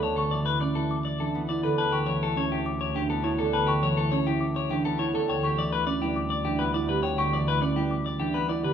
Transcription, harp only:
X:1
M:3/4
L:1/16
Q:1/4=103
K:Amix
V:1 name="Harp" clef=bass
[D,E,A,B,C]2 E,3 A,3 E, B,2 D, | z2 E,3 A,3 E, B,2 D,- | D,2 E,3 A,3 E, B,2 D, | z2 E,3 G,3 E, B,2 D,- |
D,2 E,3 G,3 E, B,2 D, |]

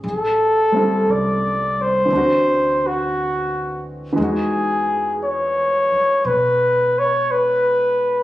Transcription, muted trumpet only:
X:1
M:4/4
L:1/8
Q:"Swing" 1/4=58
K:Alyd
V:1 name="Muted trumpet"
A2 =d =c2 F2 z | G2 c2 B c B2 |]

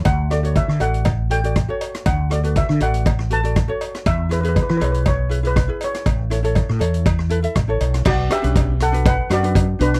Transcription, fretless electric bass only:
X:1
M:4/4
L:1/16
Q:"Swing 16ths" 1/4=120
K:D
V:1 name="Fretless electric bass" clef=bass
D,,4- D,, D, A,,,8 z2 | D,,4- D,, D, A,,,8 z2 | E,,4- E,, E, B,,,8 z2 | A,,,4- A,,, A,, E,,6 A,,,2 B,,,2 |
B,,,2 z B,,,6- B,,, F,,4 B,,,2 |]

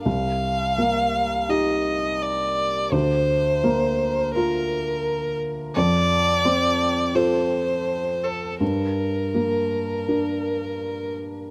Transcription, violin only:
X:1
M:4/4
L:1/8
Q:1/4=84
K:Cdor
V:1 name="Violin"
f4 e2 d2 | c4 B3 z | d4 c3 A | B6- B z |]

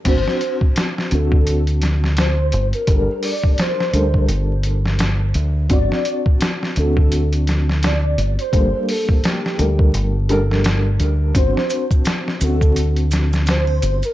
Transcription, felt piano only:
X:1
M:4/4
L:1/8
Q:"Swing 16ths" 1/4=85
K:Dphr
V:1 name="Felt piano"
[CD^F]3 [CDF]4- [CDF] | [G,DAB]3 [G,DAB]4- [G,DAB] | [CD^F]3 [CDF]4- [CDF] | [G,B,DA]3 [G,DAB]2 [G,DAB]3 |
[CD^F]3 [CDF]4- [CDF] |]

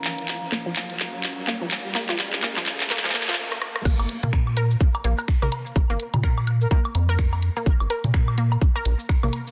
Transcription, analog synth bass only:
X:1
M:4/4
L:1/16
Q:"Swing 16ths" 1/4=126
K:Bbm
V:1 name="Analog synth bass" clef=bass
z16 | z16 | B,,, A,,, z B,,4- B,, z2 B,,, z2 B,,, z2 | B,,, A,,, z B,,4- B,, z2 F,,4- F,, z |
B,,, A,,, z B,,4- B,, z2 B,,, z2 B,,, z2 |]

